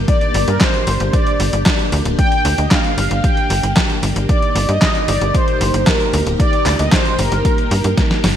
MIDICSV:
0, 0, Header, 1, 5, 480
1, 0, Start_track
1, 0, Key_signature, -2, "minor"
1, 0, Tempo, 526316
1, 75, Time_signature, 4, 2, 24, 8
1, 7629, End_track
2, 0, Start_track
2, 0, Title_t, "Analog polysynth"
2, 0, Program_c, 0, 90
2, 75, Note_on_c, 0, 74, 120
2, 435, Note_on_c, 0, 70, 91
2, 446, Note_off_c, 0, 74, 0
2, 546, Note_off_c, 0, 70, 0
2, 555, Note_on_c, 0, 72, 105
2, 1035, Note_on_c, 0, 74, 97
2, 1049, Note_off_c, 0, 72, 0
2, 1481, Note_off_c, 0, 74, 0
2, 1992, Note_on_c, 0, 79, 120
2, 2352, Note_on_c, 0, 75, 86
2, 2364, Note_off_c, 0, 79, 0
2, 2474, Note_on_c, 0, 77, 106
2, 2477, Note_off_c, 0, 75, 0
2, 2954, Note_on_c, 0, 79, 98
2, 2969, Note_off_c, 0, 77, 0
2, 3401, Note_off_c, 0, 79, 0
2, 3914, Note_on_c, 0, 74, 115
2, 4272, Note_on_c, 0, 75, 110
2, 4285, Note_off_c, 0, 74, 0
2, 4632, Note_on_c, 0, 74, 108
2, 4644, Note_off_c, 0, 75, 0
2, 4872, Note_on_c, 0, 72, 109
2, 4880, Note_off_c, 0, 74, 0
2, 5350, Note_on_c, 0, 70, 99
2, 5368, Note_off_c, 0, 72, 0
2, 5687, Note_off_c, 0, 70, 0
2, 5830, Note_on_c, 0, 74, 106
2, 6191, Note_on_c, 0, 75, 96
2, 6203, Note_off_c, 0, 74, 0
2, 6311, Note_on_c, 0, 72, 99
2, 6317, Note_off_c, 0, 75, 0
2, 6551, Note_on_c, 0, 70, 98
2, 6560, Note_off_c, 0, 72, 0
2, 7476, Note_off_c, 0, 70, 0
2, 7629, End_track
3, 0, Start_track
3, 0, Title_t, "String machine"
3, 0, Program_c, 1, 50
3, 0, Note_on_c, 1, 58, 79
3, 0, Note_on_c, 1, 67, 91
3, 73, Note_on_c, 1, 62, 72
3, 3878, Note_off_c, 1, 58, 0
3, 3878, Note_off_c, 1, 62, 0
3, 3879, Note_off_c, 1, 67, 0
3, 3913, Note_on_c, 1, 58, 79
3, 3913, Note_on_c, 1, 63, 73
3, 3913, Note_on_c, 1, 67, 91
3, 7629, Note_off_c, 1, 58, 0
3, 7629, Note_off_c, 1, 63, 0
3, 7629, Note_off_c, 1, 67, 0
3, 7629, End_track
4, 0, Start_track
4, 0, Title_t, "Analog synth bass"
4, 0, Program_c, 2, 38
4, 316, Note_on_c, 2, 31, 98
4, 412, Note_off_c, 2, 31, 0
4, 436, Note_on_c, 2, 43, 80
4, 532, Note_off_c, 2, 43, 0
4, 796, Note_on_c, 2, 31, 92
4, 892, Note_off_c, 2, 31, 0
4, 916, Note_on_c, 2, 31, 85
4, 1012, Note_off_c, 2, 31, 0
4, 1275, Note_on_c, 2, 31, 93
4, 1372, Note_off_c, 2, 31, 0
4, 1396, Note_on_c, 2, 31, 84
4, 1492, Note_off_c, 2, 31, 0
4, 1754, Note_on_c, 2, 38, 96
4, 1852, Note_off_c, 2, 38, 0
4, 1873, Note_on_c, 2, 26, 84
4, 1971, Note_off_c, 2, 26, 0
4, 2235, Note_on_c, 2, 38, 97
4, 2332, Note_off_c, 2, 38, 0
4, 2355, Note_on_c, 2, 38, 80
4, 2452, Note_off_c, 2, 38, 0
4, 2714, Note_on_c, 2, 31, 90
4, 2812, Note_off_c, 2, 31, 0
4, 2835, Note_on_c, 2, 31, 83
4, 2932, Note_off_c, 2, 31, 0
4, 3194, Note_on_c, 2, 31, 95
4, 3291, Note_off_c, 2, 31, 0
4, 3314, Note_on_c, 2, 31, 78
4, 3411, Note_off_c, 2, 31, 0
4, 3673, Note_on_c, 2, 31, 92
4, 3771, Note_off_c, 2, 31, 0
4, 3795, Note_on_c, 2, 31, 84
4, 3892, Note_off_c, 2, 31, 0
4, 4153, Note_on_c, 2, 31, 100
4, 4251, Note_off_c, 2, 31, 0
4, 4275, Note_on_c, 2, 43, 80
4, 4372, Note_off_c, 2, 43, 0
4, 4635, Note_on_c, 2, 31, 96
4, 4732, Note_off_c, 2, 31, 0
4, 4755, Note_on_c, 2, 31, 87
4, 4852, Note_off_c, 2, 31, 0
4, 5114, Note_on_c, 2, 31, 95
4, 5212, Note_off_c, 2, 31, 0
4, 5234, Note_on_c, 2, 31, 84
4, 5332, Note_off_c, 2, 31, 0
4, 5595, Note_on_c, 2, 38, 95
4, 5692, Note_off_c, 2, 38, 0
4, 5714, Note_on_c, 2, 26, 81
4, 5812, Note_off_c, 2, 26, 0
4, 6073, Note_on_c, 2, 38, 95
4, 6171, Note_off_c, 2, 38, 0
4, 6196, Note_on_c, 2, 38, 82
4, 6292, Note_off_c, 2, 38, 0
4, 6555, Note_on_c, 2, 31, 90
4, 6652, Note_off_c, 2, 31, 0
4, 6674, Note_on_c, 2, 31, 84
4, 6772, Note_off_c, 2, 31, 0
4, 7035, Note_on_c, 2, 43, 95
4, 7132, Note_off_c, 2, 43, 0
4, 7155, Note_on_c, 2, 43, 85
4, 7252, Note_off_c, 2, 43, 0
4, 7518, Note_on_c, 2, 31, 92
4, 7613, Note_off_c, 2, 31, 0
4, 7629, End_track
5, 0, Start_track
5, 0, Title_t, "Drums"
5, 74, Note_on_c, 9, 36, 127
5, 74, Note_on_c, 9, 42, 49
5, 165, Note_off_c, 9, 36, 0
5, 165, Note_off_c, 9, 42, 0
5, 194, Note_on_c, 9, 42, 24
5, 285, Note_off_c, 9, 42, 0
5, 314, Note_on_c, 9, 46, 108
5, 405, Note_off_c, 9, 46, 0
5, 435, Note_on_c, 9, 42, 51
5, 526, Note_off_c, 9, 42, 0
5, 554, Note_on_c, 9, 36, 109
5, 554, Note_on_c, 9, 38, 127
5, 554, Note_on_c, 9, 39, 94
5, 554, Note_on_c, 9, 42, 52
5, 645, Note_off_c, 9, 36, 0
5, 645, Note_off_c, 9, 38, 0
5, 645, Note_off_c, 9, 39, 0
5, 645, Note_off_c, 9, 42, 0
5, 675, Note_on_c, 9, 42, 25
5, 766, Note_off_c, 9, 42, 0
5, 794, Note_on_c, 9, 46, 93
5, 885, Note_off_c, 9, 46, 0
5, 914, Note_on_c, 9, 42, 50
5, 1005, Note_off_c, 9, 42, 0
5, 1034, Note_on_c, 9, 36, 114
5, 1035, Note_on_c, 9, 42, 52
5, 1125, Note_off_c, 9, 36, 0
5, 1127, Note_off_c, 9, 42, 0
5, 1155, Note_on_c, 9, 42, 26
5, 1246, Note_off_c, 9, 42, 0
5, 1275, Note_on_c, 9, 46, 109
5, 1366, Note_off_c, 9, 46, 0
5, 1395, Note_on_c, 9, 42, 52
5, 1486, Note_off_c, 9, 42, 0
5, 1514, Note_on_c, 9, 36, 101
5, 1514, Note_on_c, 9, 38, 124
5, 1514, Note_on_c, 9, 39, 89
5, 1514, Note_on_c, 9, 42, 51
5, 1605, Note_off_c, 9, 36, 0
5, 1605, Note_off_c, 9, 38, 0
5, 1605, Note_off_c, 9, 39, 0
5, 1605, Note_off_c, 9, 42, 0
5, 1635, Note_on_c, 9, 42, 26
5, 1726, Note_off_c, 9, 42, 0
5, 1754, Note_on_c, 9, 46, 91
5, 1845, Note_off_c, 9, 46, 0
5, 1874, Note_on_c, 9, 42, 52
5, 1965, Note_off_c, 9, 42, 0
5, 1994, Note_on_c, 9, 36, 118
5, 1994, Note_on_c, 9, 42, 51
5, 2085, Note_off_c, 9, 36, 0
5, 2085, Note_off_c, 9, 42, 0
5, 2114, Note_on_c, 9, 42, 25
5, 2205, Note_off_c, 9, 42, 0
5, 2234, Note_on_c, 9, 46, 116
5, 2325, Note_off_c, 9, 46, 0
5, 2354, Note_on_c, 9, 42, 51
5, 2446, Note_off_c, 9, 42, 0
5, 2474, Note_on_c, 9, 36, 105
5, 2474, Note_on_c, 9, 38, 117
5, 2474, Note_on_c, 9, 39, 86
5, 2474, Note_on_c, 9, 42, 55
5, 2565, Note_off_c, 9, 36, 0
5, 2565, Note_off_c, 9, 38, 0
5, 2565, Note_off_c, 9, 39, 0
5, 2565, Note_off_c, 9, 42, 0
5, 2595, Note_on_c, 9, 42, 25
5, 2686, Note_off_c, 9, 42, 0
5, 2715, Note_on_c, 9, 46, 98
5, 2807, Note_off_c, 9, 46, 0
5, 2835, Note_on_c, 9, 42, 54
5, 2926, Note_off_c, 9, 42, 0
5, 2954, Note_on_c, 9, 36, 113
5, 2955, Note_on_c, 9, 42, 55
5, 3045, Note_off_c, 9, 36, 0
5, 3046, Note_off_c, 9, 42, 0
5, 3075, Note_on_c, 9, 42, 26
5, 3166, Note_off_c, 9, 42, 0
5, 3193, Note_on_c, 9, 46, 113
5, 3285, Note_off_c, 9, 46, 0
5, 3314, Note_on_c, 9, 42, 52
5, 3405, Note_off_c, 9, 42, 0
5, 3434, Note_on_c, 9, 36, 99
5, 3435, Note_on_c, 9, 38, 123
5, 3435, Note_on_c, 9, 39, 89
5, 3435, Note_on_c, 9, 42, 54
5, 3525, Note_off_c, 9, 36, 0
5, 3526, Note_off_c, 9, 38, 0
5, 3526, Note_off_c, 9, 39, 0
5, 3526, Note_off_c, 9, 42, 0
5, 3555, Note_on_c, 9, 42, 27
5, 3646, Note_off_c, 9, 42, 0
5, 3674, Note_on_c, 9, 46, 97
5, 3765, Note_off_c, 9, 46, 0
5, 3795, Note_on_c, 9, 42, 51
5, 3886, Note_off_c, 9, 42, 0
5, 3914, Note_on_c, 9, 36, 117
5, 3915, Note_on_c, 9, 42, 55
5, 4005, Note_off_c, 9, 36, 0
5, 4006, Note_off_c, 9, 42, 0
5, 4036, Note_on_c, 9, 42, 26
5, 4127, Note_off_c, 9, 42, 0
5, 4155, Note_on_c, 9, 46, 118
5, 4246, Note_off_c, 9, 46, 0
5, 4275, Note_on_c, 9, 42, 54
5, 4366, Note_off_c, 9, 42, 0
5, 4394, Note_on_c, 9, 36, 100
5, 4395, Note_on_c, 9, 38, 118
5, 4395, Note_on_c, 9, 39, 92
5, 4395, Note_on_c, 9, 42, 58
5, 4485, Note_off_c, 9, 36, 0
5, 4486, Note_off_c, 9, 38, 0
5, 4486, Note_off_c, 9, 39, 0
5, 4486, Note_off_c, 9, 42, 0
5, 4515, Note_on_c, 9, 42, 27
5, 4606, Note_off_c, 9, 42, 0
5, 4635, Note_on_c, 9, 46, 101
5, 4726, Note_off_c, 9, 46, 0
5, 4755, Note_on_c, 9, 42, 54
5, 4847, Note_off_c, 9, 42, 0
5, 4874, Note_on_c, 9, 36, 110
5, 4875, Note_on_c, 9, 42, 56
5, 4965, Note_off_c, 9, 36, 0
5, 4966, Note_off_c, 9, 42, 0
5, 4995, Note_on_c, 9, 42, 26
5, 5086, Note_off_c, 9, 42, 0
5, 5115, Note_on_c, 9, 46, 114
5, 5206, Note_off_c, 9, 46, 0
5, 5236, Note_on_c, 9, 42, 53
5, 5327, Note_off_c, 9, 42, 0
5, 5354, Note_on_c, 9, 36, 95
5, 5355, Note_on_c, 9, 38, 118
5, 5355, Note_on_c, 9, 39, 93
5, 5355, Note_on_c, 9, 42, 57
5, 5445, Note_off_c, 9, 36, 0
5, 5446, Note_off_c, 9, 38, 0
5, 5446, Note_off_c, 9, 39, 0
5, 5446, Note_off_c, 9, 42, 0
5, 5475, Note_on_c, 9, 42, 27
5, 5566, Note_off_c, 9, 42, 0
5, 5595, Note_on_c, 9, 46, 99
5, 5686, Note_off_c, 9, 46, 0
5, 5715, Note_on_c, 9, 42, 59
5, 5806, Note_off_c, 9, 42, 0
5, 5834, Note_on_c, 9, 36, 123
5, 5836, Note_on_c, 9, 42, 57
5, 5925, Note_off_c, 9, 36, 0
5, 5927, Note_off_c, 9, 42, 0
5, 5955, Note_on_c, 9, 42, 26
5, 6046, Note_off_c, 9, 42, 0
5, 6075, Note_on_c, 9, 39, 74
5, 6075, Note_on_c, 9, 46, 119
5, 6166, Note_off_c, 9, 39, 0
5, 6166, Note_off_c, 9, 46, 0
5, 6195, Note_on_c, 9, 42, 55
5, 6286, Note_off_c, 9, 42, 0
5, 6314, Note_on_c, 9, 36, 109
5, 6315, Note_on_c, 9, 38, 122
5, 6315, Note_on_c, 9, 39, 95
5, 6315, Note_on_c, 9, 42, 56
5, 6405, Note_off_c, 9, 36, 0
5, 6406, Note_off_c, 9, 38, 0
5, 6406, Note_off_c, 9, 39, 0
5, 6406, Note_off_c, 9, 42, 0
5, 6435, Note_on_c, 9, 42, 27
5, 6526, Note_off_c, 9, 42, 0
5, 6554, Note_on_c, 9, 46, 100
5, 6645, Note_off_c, 9, 46, 0
5, 6674, Note_on_c, 9, 42, 54
5, 6765, Note_off_c, 9, 42, 0
5, 6793, Note_on_c, 9, 36, 109
5, 6794, Note_on_c, 9, 42, 56
5, 6885, Note_off_c, 9, 36, 0
5, 6885, Note_off_c, 9, 42, 0
5, 6914, Note_on_c, 9, 42, 28
5, 7005, Note_off_c, 9, 42, 0
5, 7034, Note_on_c, 9, 46, 110
5, 7125, Note_off_c, 9, 46, 0
5, 7153, Note_on_c, 9, 42, 54
5, 7244, Note_off_c, 9, 42, 0
5, 7274, Note_on_c, 9, 36, 101
5, 7274, Note_on_c, 9, 38, 66
5, 7274, Note_on_c, 9, 42, 56
5, 7365, Note_off_c, 9, 36, 0
5, 7365, Note_off_c, 9, 38, 0
5, 7365, Note_off_c, 9, 42, 0
5, 7395, Note_on_c, 9, 38, 62
5, 7395, Note_on_c, 9, 42, 29
5, 7486, Note_off_c, 9, 38, 0
5, 7486, Note_off_c, 9, 42, 0
5, 7514, Note_on_c, 9, 38, 86
5, 7514, Note_on_c, 9, 46, 97
5, 7605, Note_off_c, 9, 38, 0
5, 7605, Note_off_c, 9, 46, 0
5, 7629, End_track
0, 0, End_of_file